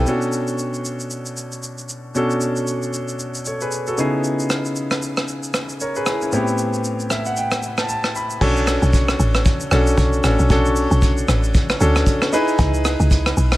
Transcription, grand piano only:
0.06 2.11 B2 medium
0.06 2.11 C#4 medium
0.06 2.12 D4 medium
0.06 2.12 F#4 medium
0.06 2.12 A4 medium
2.15 3.94 B2 medium
2.15 3.94 C#4 medium
2.15 3.94 D4 medium
2.15 3.44 F#4 medium
2.15 3.44 A4 medium
3.47 3.61 A4 medium
3.47 3.60 C#5 medium
3.62 3.86 G#4 medium
3.62 3.86 B4 medium
3.88 4.12 F#4 medium
3.88 4.12 A4 medium
3.98 6.02 C#3 medium
3.98 6.03 B3 medium
3.98 5.52 D#4 medium
3.98 5.52 E4 medium
3.98 5.52 G#4 medium
5.81 5.95 A#4 medium
5.81 5.95 C#5 medium
5.96 6.05 G#4 medium
5.96 6.06 B4 medium
6.07 6.20 E4 medium
6.07 6.21 G#4 medium
6.22 6.47 C#4 medium
6.22 6.32 E4 medium
6.32 8.37 A2 medium
6.32 8.37 B3 medium
6.32 8.37 C4 medium
6.32 8.38 E4 medium
6.32 8.38 G4 medium
7.11 7.25 E5 medium
7.26 7.36 F#5 medium
7.37 7.75 G5 medium
7.79 7.88 A5 medium
7.90 8.14 A5 medium
8.16 8.40 B5 medium
8.41 9.25 C#4 medium
8.41 9.26 D4 medium
8.41 9.26 F#4 medium
8.41 9.26 A4 loud
9.72 10.15 C#4 medium
9.72 10.15 D4 medium
9.72 10.15 F#4 medium
9.72 10.16 A4 medium
10.24 10.46 C#4 medium
10.24 10.46 D4 medium
10.24 10.46 F#4 medium
10.24 10.46 A4 medium
10.50 11.34 C#4 medium
10.50 11.34 D4 medium
10.50 11.35 F#4 medium
10.50 11.35 A4 loud
11.80 12.24 C#4 medium
11.80 12.24 D4 medium
11.80 12.24 F#4 medium
11.80 12.24 A4 loud
12.33 13.17 D#4 medium
12.33 13.17 E4 medium
12.33 13.17 G#4 medium
12.33 13.17 B4 loud

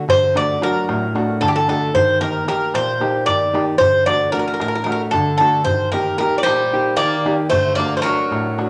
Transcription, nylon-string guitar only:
0.08 0.60 D3 medium
0.35 0.78 A3 soft
0.35 0.61 D4 soft
0.35 0.61 F#4 medium
0.61 1.04 F#3 soft
0.61 1.04 D4 soft
0.61 1.05 F#4 medium
0.89 1.40 A2 medium
1.15 1.57 A3 medium
1.15 1.57 D4 soft
1.15 1.58 F#4 medium
1.41 1.93 D3 medium
1.68 1.89 A3 soft
1.68 1.89 D4 soft
1.68 1.90 F#4 medium
1.94 2.46 D#3 medium
2.21 2.46 A#3 soft
2.21 2.47 D#4 soft
2.21 2.47 G4 medium
2.48 2.90 A#3 soft
2.48 2.90 D#4 soft
2.48 2.91 G4 medium
2.74 3.26 A#2 medium
3.00 3.43 A#3 medium
3.00 3.43 D#4 soft
3.00 3.44 G4 medium
3.27 3.79 D#3 medium
3.53 3.75 A#3 soft
3.53 3.75 D#4 soft
3.53 3.75 G4 medium
3.79 4.31 D3 medium
4.06 4.32 A3 medium
4.06 4.32 D4 soft
4.06 4.33 F#4 medium
4.33 4.76 A3 medium
4.33 4.76 D4 soft
4.33 4.76 F#4 medium
4.61 5.12 A2 medium
4.87 5.29 A3 soft
4.87 5.29 D4 soft
4.87 5.30 F#4 medium
5.14 5.65 D3 medium
5.40 5.61 A3 soft
5.40 5.61 D4 soft
5.40 5.62 F#4 medium
5.68 6.19 D#3 medium
5.93 6.19 A#3 soft
5.93 6.19 D#4 soft
5.93 6.20 G4 medium
6.20 6.62 A#3 soft
6.20 6.62 D#4 soft
6.20 6.63 G4 medium
6.47 6.98 A#2 medium
6.73 7.15 A#3 soft
6.73 7.15 D#4 soft
6.73 7.16 G4 medium
6.99 7.51 D#3 medium
7.25 7.46 A#3 soft
7.25 7.47 D#4 soft
7.25 7.47 G4 medium
7.53 8.04 D3 medium
7.78 8.21 A3 soft
7.78 8.04 D4 soft
7.78 8.04 F#4 medium
8.05 8.47 F#3 soft
8.05 8.47 D4 soft
8.05 8.48 F#4 medium
8.31 8.70 A2 medium
8.58 8.70 A3 soft
8.58 8.70 D4 soft
8.58 8.70 F#4 medium

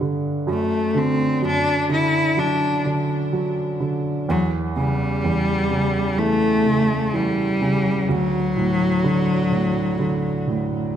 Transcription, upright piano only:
0.00 0.50 G2 soft
0.00 0.49 D3 soft
0.47 1.40 F#2 medium
0.94 1.88 D3 soft
1.42 3.29 F#2 medium
1.89 2.83 D3 soft
2.37 3.31 F#3 soft
2.85 3.79 D3 soft
3.33 4.25 F#3 soft
3.80 4.27 D3 soft
4.29 5.23 E2 medium
4.76 5.70 C#3 soft
5.24 7.10 E2 medium
5.71 6.65 C#3 soft
6.18 7.12 E3 soft
6.66 7.60 C#3 soft
7.14 8.06 E3 soft
7.61 8.08 C#3 soft
8.09 10.96 D2 medium
8.57 9.50 A2 soft
9.04 9.98 D3 soft
9.51 10.46 A2 soft
9.99 10.96 D3 soft
10.47 10.96 A2 soft

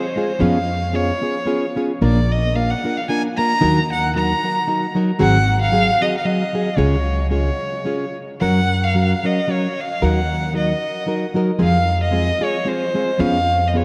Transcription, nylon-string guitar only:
0.16 0.31 G#3 soft
0.16 0.31 C4 soft
0.16 0.31 F4 soft
0.16 0.32 G#4 medium
0.39 0.57 F3 medium
0.39 0.57 B3 medium
0.39 0.58 C#4 medium
0.39 0.58 F4 medium
0.39 0.58 G#4 medium
0.92 1.10 B3 medium
0.92 1.10 C#4 soft
0.92 1.11 F4 medium
0.92 1.11 G#4 medium
1.21 1.37 B3 soft
1.21 1.37 C#4 soft
1.21 1.37 F4 soft
1.21 1.37 G#4 soft
1.46 1.64 B3 soft
1.46 1.65 C#4 medium
1.46 1.65 F4 medium
1.46 1.65 G#4 medium
1.75 1.91 B3 medium
1.75 1.91 C#4 medium
1.75 1.92 F4 medium
1.75 1.92 G#4 medium
2.01 2.19 A#2 medium
2.01 2.19 F3 medium
2.01 2.19 A#3 medium
2.01 2.19 D4 medium
2.01 2.19 F4 medium
2.01 2.20 A#4 medium
2.55 2.73 A#3 medium
2.55 2.73 D4 medium
2.55 2.73 F4 medium
2.55 2.74 A#4 medium
2.84 2.99 A#3 soft
2.84 3.00 D4 soft
2.84 3.00 F4 soft
2.84 3.00 A#4 medium
3.09 3.27 A#3 medium
3.09 3.27 D4 medium
3.09 3.27 F4 medium
3.09 3.27 A#4 medium
3.38 3.53 A#3 soft
3.38 3.53 D4 soft
3.38 3.53 F4 soft
3.38 3.53 A#4 medium
3.61 3.79 D#3 medium
3.61 3.79 F#3 medium
3.61 3.79 D#4 medium
3.61 3.80 F#4 medium
3.61 3.80 A#4 loud
4.15 4.32 F#3 medium
4.15 4.33 D#4 medium
4.15 4.33 F#4 medium
4.15 4.33 A#4 medium
4.43 4.58 F#3 soft
4.43 4.58 D#4 soft
4.43 4.59 F#4 soft
4.43 4.59 A#4 medium
4.67 4.85 F#3 medium
4.67 4.85 D#4 medium
4.67 4.86 F#4 medium
4.67 4.86 A#4 medium
4.95 5.10 F#3 medium
4.95 5.11 D#4 medium
4.95 5.11 F#4 medium
4.95 5.11 A#4 medium
5.19 5.37 G#2 medium
5.19 5.37 D#3 medium
5.19 5.37 F#3 medium
5.19 5.37 C4 loud
5.19 5.37 F#4 loud
5.19 5.38 G#4 medium
5.71 5.89 F#3 medium
5.71 5.89 C4 medium
5.71 5.90 F#4 medium
5.71 5.90 G#4 medium
6.01 6.15 F#3 soft
6.01 6.16 C4 soft
6.01 6.16 F#4 medium
6.01 6.16 G#4 soft
6.25 6.42 F#3 medium
6.25 6.43 C4 medium
6.25 6.43 F#4 soft
6.25 6.43 G#4 medium
6.53 6.68 F#3 medium
6.53 6.69 C4 soft
6.53 6.69 F#4 medium
6.53 6.69 G#4 medium
6.77 6.95 C#3 medium
6.77 6.95 G#3 medium
6.77 6.95 C#4 medium
6.77 6.95 F4 medium
6.77 6.96 G#4 medium
7.30 7.49 G#3 soft
7.30 7.49 C#4 soft
7.30 7.49 F4 medium
7.30 7.49 G#4 medium
7.84 8.04 G#3 medium
7.84 8.04 C#4 medium
7.84 8.04 F4 medium
7.84 8.05 G#4 medium
8.41 8.59 F#3 medium
8.41 8.60 C#4 medium
8.41 8.60 F#4 medium
8.41 8.60 A#4 medium
8.95 9.13 F#3 medium
8.95 9.14 C#4 soft
8.95 9.13 F#4 soft
8.95 9.14 A#4 soft
9.24 9.39 F#3 soft
9.24 9.40 C#4 soft
9.24 9.40 F#4 soft
9.24 9.40 A#4 soft
9.48 9.66 F#3 soft
9.48 9.66 C#4 medium
9.48 9.67 F#4 medium
9.48 9.67 A#4 medium
10.01 10.20 D#3 medium
10.01 10.20 F#3 medium
10.01 10.20 D#4 medium
10.01 10.20 F#4 medium
10.01 10.20 A#4 medium
10.54 10.72 F#3 medium
10.54 10.72 D#4 soft
10.54 10.73 F#4 medium
10.54 10.73 A#4 soft
11.06 11.25 F#3 soft
11.06 11.25 D#4 medium
11.06 11.25 F#4 medium
11.06 11.26 A#4 medium
11.34 11.50 F#3 medium
11.34 11.50 D#4 soft
11.34 11.51 F#4 medium
11.34 11.51 A#4 medium
11.59 11.77 F3 medium
11.59 11.77 G#3 medium
11.59 11.77 C4 medium
11.59 11.77 F4 medium
11.59 11.77 G#4 medium
12.11 12.30 G#3 medium
12.11 12.30 C4 medium
12.11 12.30 F4 medium
12.11 12.31 G#4 medium
12.39 12.56 G#3 soft
12.39 12.56 C4 soft
12.39 12.56 F4 soft
12.39 12.57 G#4 medium
12.65 12.83 G#3 soft
12.65 12.84 C4 medium
12.65 12.84 F4 medium
12.65 12.84 G#4 medium
12.94 13.10 G#3 soft
12.94 13.10 C4 soft
12.94 13.10 F4 soft
12.94 13.10 G#4 medium
13.18 13.37 F3 medium
13.18 13.37 B3 medium
13.18 13.37 C#4 medium
13.18 13.37 F4 medium
13.18 13.37 G#4 medium
13.74 13.85 B3 medium
13.74 13.85 C#4 soft
13.74 13.85 F4 soft
13.74 13.85 G#4 medium

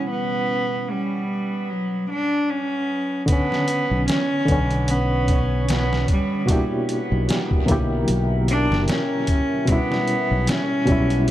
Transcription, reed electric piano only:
3.26 4.43 D3 medium
3.26 4.45 B3 medium
3.32 4.46 C#4 loud
4.45 6.02 D3 loud
4.45 6.04 B3 medium
4.52 6.06 C#4 loud
6.46 7.63 B2 loud
6.46 7.64 A#3 medium
6.46 7.63 F#4 medium
6.50 7.65 D4 medium
6.50 7.66 E4 medium
6.50 7.66 G4 loud
7.66 9.23 B2 loud
7.66 9.25 D3 medium
7.66 9.23 F#3 medium
7.66 9.24 A#3 medium
7.71 9.25 E4 medium
7.71 9.26 G4 loud
9.65 10.83 B2 medium
9.65 10.84 G3 medium
9.70 10.85 C#4 medium
9.70 10.86 E4 loud
10.86 11.31 B2 medium
10.86 11.31 G3 medium
10.86 11.31 C#4 medium
10.92 11.31 E4 loud

